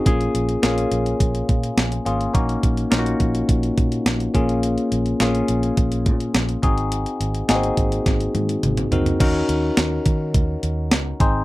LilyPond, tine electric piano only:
\new Staff \with { instrumentName = "Tine electric piano" } { \time 4/4 \key ees \dorian \tempo 4 = 105 <bes des' f' aes'>8 r8 <bes des' f' aes'>4. r4 <bes des' f' aes'>8 | <bes des' ees' ges'>8 r8 <bes des' ees' f' ges'>4. r4 <bes des' f' aes'>8~ | <bes des' f' aes'>8 r8 <bes des' f' aes'>4. r4 <c' ees' ges' aes'>8~ | <c' ees' ges' aes'>8 r8 <bes c' ees' ges' aes'>4. r4 <c' ees' ges' bes'>8 |
<des' ees' ges' bes'>4. r2 <c' ees' aes' c''>8 | }